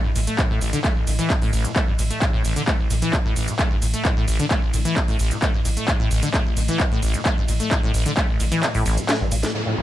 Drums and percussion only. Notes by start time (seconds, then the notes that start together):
0.16 open hi-hat, ride, shaker
0.27 closed hi-hat, shaker
0.39 kick, clap, closed hi-hat, shaker
0.61 open hi-hat, ride, shaker
0.73 closed hi-hat, shaker
0.84 kick, clap, closed hi-hat, shaker
1.07 open hi-hat, ride, shaker
1.19 closed hi-hat, shaker
1.30 kick, clap, closed hi-hat, shaker
1.42 open hi-hat
1.53 open hi-hat, ride, shaker
1.65 closed hi-hat, shaker
1.76 kick, clap, closed hi-hat, shaker
1.99 open hi-hat, ride, shaker
2.10 closed hi-hat, shaker
2.22 kick, clap, closed hi-hat, shaker
2.45 open hi-hat, ride, shaker
2.56 closed hi-hat, shaker
2.68 kick, clap, closed hi-hat, shaker
2.90 open hi-hat, ride, shaker
3.02 closed hi-hat, shaker
3.13 kick, clap, closed hi-hat, shaker
3.36 open hi-hat, ride, shaker
3.48 closed hi-hat, shaker
3.59 kick, clap, closed hi-hat, shaker
3.82 open hi-hat, ride, shaker
3.94 closed hi-hat, shaker
4.05 kick, clap, closed hi-hat, shaker
4.28 open hi-hat, ride, shaker
4.39 closed hi-hat, shaker
4.51 kick, clap, closed hi-hat, shaker
4.74 open hi-hat, ride, shaker
4.85 closed hi-hat, shaker
4.96 kick, clap, closed hi-hat, shaker
5.08 open hi-hat
5.19 open hi-hat, ride, shaker
5.31 closed hi-hat, shaker
5.42 kick, clap, closed hi-hat, shaker
5.65 open hi-hat, ride, shaker
5.77 closed hi-hat, shaker
5.88 kick, clap, closed hi-hat, shaker
6.11 open hi-hat, ride, shaker
6.23 closed hi-hat, shaker
6.34 kick, clap, closed hi-hat, shaker
6.57 open hi-hat, ride, shaker
6.68 closed hi-hat, shaker
6.80 kick, clap, closed hi-hat, shaker
7.03 open hi-hat, ride, shaker
7.14 closed hi-hat, shaker
7.25 kick, clap, closed hi-hat, shaker
7.48 open hi-hat, ride, shaker
7.60 closed hi-hat, shaker
7.71 kick, clap, closed hi-hat, shaker
7.94 open hi-hat, ride, shaker
8.06 closed hi-hat, shaker
8.17 kick, clap, closed hi-hat, shaker
8.40 open hi-hat, ride, shaker
8.52 closed hi-hat, shaker
8.63 clap, closed hi-hat, shaker
8.75 open hi-hat
8.86 open hi-hat, ride, shaker
8.97 closed hi-hat, shaker
9.09 snare, clap, closed hi-hat, shaker
9.32 open hi-hat, ride, shaker
9.43 snare, closed hi-hat, shaker